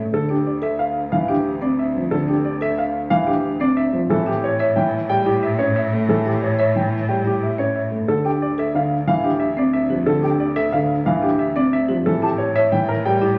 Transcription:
0.00 0.18 A3 soft
0.12 4.00 D2 medium
0.12 0.34 D3 medium
0.12 0.34 A4 medium
0.29 0.51 D4 soft
0.29 0.51 G4 soft
0.47 0.67 D5 soft
0.62 0.84 A4 medium
0.62 0.84 E5 medium
0.79 1.00 F5 medium
1.12 1.34 E3 medium
1.12 1.33 F5 medium
1.28 1.50 D4 medium
1.28 1.50 G4 medium
1.62 1.83 C4 medium
1.62 1.83 D5 medium
1.79 2.00 E5 medium
1.95 2.17 F3 soft
2.11 2.33 D3 medium
2.11 2.33 A4 medium
2.28 2.50 D4 medium
2.28 2.50 G4 medium
2.45 2.66 D5 medium
2.61 2.83 A4 medium
2.61 2.83 E5 medium
2.78 2.99 F5 medium
3.10 3.32 E3 medium
3.10 3.32 F5 medium
3.26 3.49 D4 medium
3.26 3.49 G4 medium
3.60 3.82 C4 medium
3.60 3.82 D5 medium
3.77 3.99 E5 medium
3.93 4.15 F3 medium
4.10 7.98 A2 medium
4.10 4.32 E3 medium
4.10 4.32 A4 medium
4.26 4.48 E4 medium
4.26 4.48 G4 medium
4.44 4.65 C#5 medium
4.59 4.81 C#5 medium
4.59 4.82 E5 medium
4.76 4.98 E3 medium
4.76 4.98 G5 medium
5.09 5.31 G3 medium
5.09 5.31 G5 medium
5.26 5.48 E4 medium
5.26 5.48 G4 medium
5.43 5.64 E5 medium
5.59 5.81 C#4 medium
5.59 5.81 C#5 medium
5.76 5.98 E5 medium
5.92 6.14 A3 medium
6.09 6.31 E3 medium
6.09 6.31 A4 medium
6.26 6.47 E4 medium
6.26 6.47 G4 medium
6.43 6.64 C#5 medium
6.59 6.80 C#5 medium
6.59 6.81 E5 medium
6.76 6.97 E3 medium
6.76 6.97 G5 medium
7.09 7.30 G3 medium
7.09 7.30 G5 medium
7.25 7.47 E4 medium
7.25 7.47 G4 medium
7.43 7.64 E5 soft
7.58 7.80 C#4 medium
7.58 7.80 C#5 medium
7.76 7.97 E5 soft
7.91 8.13 A3 soft
8.08 11.95 D2 medium
8.08 8.30 D3 medium
8.08 8.30 A4 medium
8.25 8.46 D4 medium
8.25 8.46 G4 medium
8.25 8.31 G5 soft
8.42 8.63 D5 medium
8.58 8.79 A4 medium
8.58 8.80 E5 medium
8.75 8.96 D3 medium
8.75 8.96 F5 medium
9.07 9.29 E3 medium
9.07 9.29 F5 medium
9.24 9.46 D4 medium
9.24 9.46 G4 medium
9.40 9.62 E5 medium
9.57 9.79 C4 medium
9.57 9.79 D5 medium
9.73 9.95 E5 medium
9.90 10.12 F3 soft
9.90 10.12 G4 medium
10.06 10.28 D3 medium
10.06 10.28 A4 medium
10.23 10.45 D4 medium
10.23 10.45 G4 medium
10.23 10.30 G5 medium
10.40 10.62 D5 medium
10.56 10.78 A4 medium
10.56 10.78 E5 medium
10.73 10.95 D3 medium
10.73 10.95 F5 medium
11.06 11.28 E3 medium
11.06 11.28 F5 medium
11.22 11.44 D4 medium
11.22 11.44 G4 medium
11.39 11.61 E5 medium
11.56 11.78 C4 medium
11.56 11.78 D5 medium
11.73 11.94 E5 medium
11.89 12.11 F3 medium
11.89 12.11 G4 medium
12.06 13.38 A2 medium
12.06 12.28 E3 medium
12.06 12.27 A4 medium
12.22 12.44 E4 medium
12.22 12.44 G4 medium
12.22 12.29 A5 medium
12.38 12.60 C#5 medium
12.56 12.77 C#5 medium
12.56 12.77 E5 medium
12.72 12.94 E3 medium
12.72 12.94 G5 medium
12.89 13.10 A#4 medium
13.05 13.27 G3 medium
13.05 13.27 G5 medium
13.21 13.38 E4 medium
13.21 13.38 G4 medium

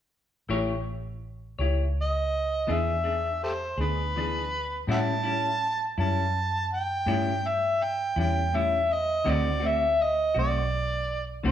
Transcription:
0.49 1.56 A1 medium
0.49 0.71 A3 medium
0.49 0.71 E4 medium
0.49 0.72 G4 medium
0.49 0.72 C#5 medium
1.59 2.66 C#2 medium
1.59 1.82 E4 soft
1.59 1.81 G4 soft
1.59 1.81 C#5 soft
2.01 2.74 D#5 medium
2.67 3.75 E2 medium
2.67 2.90 E3 medium
2.67 2.90 B3 medium
2.67 2.91 D4 medium
2.67 2.91 G#4 medium
2.72 3.43 E5 medium
3.04 3.28 B3 soft
3.04 3.27 D4 soft
3.04 3.27 G#4 soft
3.44 3.51 G4 soft
3.44 3.51 A4 soft
3.44 3.77 C5 medium
3.78 4.84 D2 medium
3.78 4.02 B3 soft
3.78 4.01 D4 soft
3.78 4.00 G#4 soft
3.78 4.85 B4 medium
4.16 4.37 E3 soft
4.16 4.38 B3 soft
4.16 4.38 D4 medium
4.16 4.39 G#4 medium
4.87 5.10 A2 medium
4.87 5.94 A2 medium
4.87 5.10 G3 medium
4.87 5.10 C#4 medium
4.87 5.11 E4 medium
4.87 4.98 E5 medium
4.87 4.99 F#5 medium
4.87 5.95 A5 loud
5.23 5.47 G3 soft
5.23 5.47 C#4 soft
5.23 5.46 E4 soft
5.98 7.04 F#2 medium
5.98 6.21 G3 soft
5.98 6.20 C#4 soft
5.98 6.20 E4 soft
5.98 6.68 A5 medium
6.73 7.49 G5 medium
7.06 8.13 G2 medium
7.06 7.29 A2 medium
7.06 7.29 G3 medium
7.06 7.29 C#4 medium
7.06 7.29 E4 medium
7.48 7.85 E5 medium
7.83 8.18 G5 medium
8.16 9.23 E2 medium
8.16 8.40 G3 soft
8.16 8.39 C#4 soft
8.16 8.38 E4 soft
8.16 8.57 G5 medium
8.53 8.75 A2 soft
8.53 8.76 G3 medium
8.53 8.76 C#4 medium
8.53 8.76 E4 medium
8.53 8.94 E5 medium
8.93 9.32 D#5 medium
9.24 10.33 D2 medium
9.24 9.47 D3 medium
9.24 9.48 A3 medium
9.24 9.48 C4 medium
9.24 9.48 F#4 medium
9.30 9.69 D5 medium
9.60 9.84 A3 soft
9.60 9.84 C4 soft
9.60 9.83 F#4 soft
9.67 10.04 E5 medium
10.02 10.37 D#5 medium
10.35 11.42 B1 medium
10.35 10.58 A3 soft
10.35 10.57 C4 soft
10.35 10.57 F#4 medium
10.39 11.30 D5 medium
11.43 11.52 C2 medium
11.43 11.52 D3 medium
11.43 11.52 A3 medium
11.43 11.52 C4 medium
11.43 11.52 F#4 medium
11.43 11.52 D5 medium

